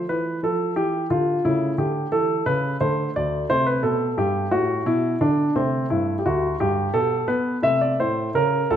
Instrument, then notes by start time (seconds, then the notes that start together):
grand piano
Already playing: A3
0.09 E3 B4
0.43 F3 A4
0.76 E3 G4
1.10 D3 F4
1.45 C#3 A3 E4
1.78 D3 G4
2.12 E3 A4
2.46 C#3 B4
2.81 D3 A3 C5
3.16 D2 D5
3.49 C3 A3 C5
3.66 B4
3.83 B2 A4
4.17 G2 G4
4.51 A2 F#4
4.86 B2 E4
5.21 D3 D4
5.55 C3 A3 C4
5.90 G2 E4
6.19 G4
6.26 D2 F#4
6.60 G2 G4
6.94 B2 B3 A4
7.28 B3 B4
7.63 C3 A3 E5
7.81 D5
8.00 A2 C5
8.34 C#3 C#4 A#4
8.70 C#2 A4